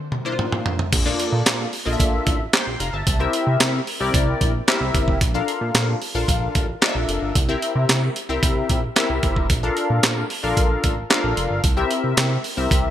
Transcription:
0.12 mid tom
0.25 A#3 D4 E4 C5
0.32 F4
0.39 mid tom
0.52 mid tom
0.66 floor tom
0.79 floor tom
0.93 A#1, kick, closed hi-hat, crash
1.05 A#3 D4 F4 A4 D5
1.20 closed hi-hat
1.32 A#2
1.46 A#2, snare, clap, closed hi-hat
1.73 open hi-hat
1.85 A#1 A#3 D4 F4 A4 D#5
1.93 E5
2.00 A#1, kick, closed hi-hat
2.27 A1, kick, closed hi-hat
2.53 G5 C6, snare, clap, closed hi-hat
2.66 A#1
2.80 F1 F5 A#5, closed hi-hat
2.93 G1 E5 A5
3.07 C2, kick, closed hi-hat
3.19 C4 E4 G4 A#4 E5
3.33 closed hi-hat
3.47 C3
3.60 C3, snare, clap, closed hi-hat
3.87 open hi-hat
4.00 C2 C4 E4 G4 A#4 D5
4.14 C2, kick, closed hi-hat
4.41 A#1, kick, closed hi-hat
4.68 C4 E4 G4 A#4 E5, snare, clap, closed hi-hat
4.81 C2
4.94 G1, kick, closed hi-hat
5.08 F1, kick
5.21 A#1, kick, closed hi-hat
5.34 D4 F4 A4 A#4 F5
5.48 closed hi-hat
5.61 A#2
5.75 A#2, snare, clap, closed hi-hat
6.02 open hi-hat
6.15 A#1 D4 F4 A4 A#4 F5
6.28 A#1, kick, closed hi-hat
6.55 A1, kick, closed hi-hat
6.81 D4 F4 A4 A#4 D#5, snare, clap, closed hi-hat
6.89 E5
6.95 A#1
7.09 F1, closed hi-hat
7.22 G1
7.35 C2, kick, closed hi-hat
7.49 C4 E4 G4 A#4 E5
7.62 closed hi-hat
7.75 C3
7.89 C3, snare, clap, closed hi-hat
8.16 closed hi-hat
8.29 C2 C4 E4 G4 A#4 E5
8.43 C2, kick, closed hi-hat
8.69 A#1, kick, closed hi-hat
8.96 C4 E4 G4 A#4 E5, snare, clap, closed hi-hat
9.10 C2
9.23 G1, kick, closed hi-hat
9.36 F1, kick
9.50 A#1, kick, closed hi-hat
9.63 D4 F4 A4 A#4 F5
9.77 closed hi-hat
9.90 A#2
10.03 A#2, snare, clap, closed hi-hat
10.30 open hi-hat
10.43 A#1 D4 F4 A4 A#4 F5
10.57 A#1, kick, closed hi-hat
10.84 A1, kick, closed hi-hat
11.10 D4 F4 A4 A#4 F5, snare, clap, closed hi-hat
11.24 A#1
11.37 F1, closed hi-hat
11.50 G1
11.64 C2, kick, closed hi-hat
11.77 C4 E4 G4 A#4 E5
11.91 closed hi-hat
12.04 C3
12.17 C3, snare, clap, closed hi-hat
12.44 open hi-hat
12.57 C2 C4 E4 G4 A#4 E5
12.71 C2, kick, closed hi-hat

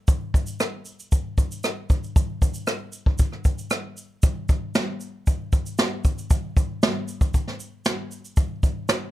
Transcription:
0.08 kick, shaker
0.34 kick, shaker
0.47 shaker
0.60 cross-stick, shaker
0.85 shaker
1.00 shaker
1.12 kick, shaker
1.38 kick, shaker
1.52 shaker
1.64 cross-stick, shaker
1.90 kick, shaker
2.04 shaker
2.16 kick, shaker
2.42 kick, shaker
2.54 shaker
2.67 cross-stick, shaker
2.92 shaker
3.06 kick
3.18 kick, shaker
3.32 cross-stick
3.45 kick, shaker
3.58 shaker
3.70 cross-stick, shaker
3.97 shaker
4.23 kick, shaker
4.49 kick, shaker
4.75 snare, shaker
5.00 shaker
5.27 kick, shaker
5.53 kick, shaker
5.66 shaker
5.78 snare, shaker
6.04 kick, shaker
6.18 shaker
6.30 kick, shaker
6.57 kick, shaker
6.83 snare, shaker
7.08 shaker
7.21 kick, shaker
7.34 kick, shaker
7.47 snare
7.60 shaker
7.85 snare, shaker
8.11 shaker
8.25 shaker
8.37 kick, shaker
8.63 kick, shaker
8.89 snare, shaker

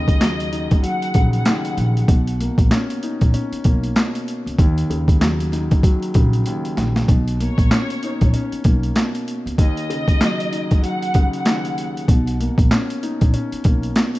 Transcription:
Already playing: D#2 C#3 D#5
0.08 kick, closed hi-hat
0.21 F#3, snare, clap, closed hi-hat
0.40 closed hi-hat
0.51 D#4, closed hi-hat
0.71 C#2, kick, closed hi-hat
0.83 F#3 F#5, closed hi-hat
1.02 closed hi-hat
1.14 A#1 C#3, kick, closed hi-hat
1.33 F#5, closed hi-hat
1.45 D#2, snare, clap, closed hi-hat
1.65 closed hi-hat
1.77 A#1, closed hi-hat
1.97 closed hi-hat
2.08 B1 B2, kick, closed hi-hat
2.27 closed hi-hat
2.40 A#3, closed hi-hat
2.58 A#1, kick, closed hi-hat
2.71 C#4, snare, clap, closed hi-hat
2.90 closed hi-hat
3.03 D#4, closed hi-hat
3.21 A#1, kick, closed hi-hat
3.34 C#4, closed hi-hat
3.52 muted upright bass stroke, closed hi-hat
3.64 B1 A#3, kick, closed hi-hat
3.84 closed hi-hat
3.96 B2, snare, clap, closed hi-hat
4.15 closed hi-hat
4.28 closed hi-hat
4.46 C#2, closed hi-hat
4.58 D#2, kick, closed hi-hat
4.78 closed hi-hat
4.90 D#2 C#3, closed hi-hat
5.08 kick, closed hi-hat
5.21 F#3, snare, clap, closed hi-hat
5.40 closed hi-hat
5.52 D#4, snare, closed hi-hat
5.71 C#2, kick, closed hi-hat
5.83 F#3, kick, closed hi-hat
6.02 closed hi-hat
6.14 A#1 C#3, kick, closed hi-hat
6.33 closed hi-hat
6.46 D#2, closed hi-hat
6.65 closed hi-hat
6.77 A#1, snare, closed hi-hat
6.96 snare, closed hi-hat
7.08 B1 B2, kick, closed hi-hat
7.28 closed hi-hat
7.40 A#3 C#5, closed hi-hat
7.58 A#1, kick, closed hi-hat
7.71 C#4, snare, clap, closed hi-hat
7.90 closed hi-hat
8.03 D#4, closed hi-hat
8.21 A#1, kick, closed hi-hat
8.34 C#4, closed hi-hat
8.52 muted upright bass stroke, closed hi-hat
8.64 B1 A#3, kick, closed hi-hat
8.83 closed hi-hat
8.96 B2, snare, clap, closed hi-hat
9.15 closed hi-hat
9.28 closed hi-hat
9.46 C#2, closed hi-hat
9.58 D#2 D#5, kick, closed hi-hat
9.77 closed hi-hat
9.90 C#3, closed hi-hat
10.08 kick, closed hi-hat
10.21 F#3, snare, clap, closed hi-hat
10.40 closed hi-hat
10.52 D#4, closed hi-hat
10.71 kick, closed hi-hat
10.83 F#3 F#5, closed hi-hat
11.02 closed hi-hat
11.14 C#3, kick, closed hi-hat
11.33 F#5, closed hi-hat
11.45 D#2, snare, clap, closed hi-hat
11.65 closed hi-hat
11.78 closed hi-hat
11.97 closed hi-hat
12.08 B1 B2, kick, closed hi-hat
12.27 closed hi-hat
12.40 A#3, closed hi-hat
12.58 A#1, kick, closed hi-hat
12.71 C#4, snare, clap, closed hi-hat
12.90 closed hi-hat
13.03 D#4, closed hi-hat
13.21 A#1, kick, closed hi-hat
13.33 C#4, closed hi-hat
13.52 muted upright bass stroke, closed hi-hat
13.64 B1 A#3, kick, closed hi-hat
13.83 closed hi-hat
13.96 B2, snare, clap, closed hi-hat
14.15 closed hi-hat

